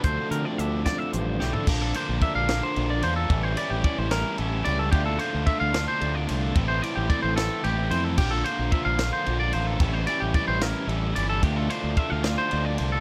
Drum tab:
CC |------------|x-----------|------------|------------|
RD |------------|--x-x-x-x-x-|x-x-x-x-x-x-|x-x-x-x-x-x-|
HH |x-x-x-x-x---|------------|------------|------------|
SD |------o---o-|------o-----|------o-----|------o-----|
FT |-----------o|------------|------------|------------|
BD |o-----o-----|o---o-------|o---o-------|o---o-------|

CC |------------|x-----------|------------|------------|
RD |x-x-x-x-x-x-|--x-x-x-x-x-|x-x-x-x-x-x-|x-x-x-x-x-x-|
HH |------------|------------|------------|------------|
SD |------o-----|------o-----|------o-----|------o-----|
FT |------------|------------|------------|------------|
BD |o---o-------|o---o-------|o---o-------|o---o-------|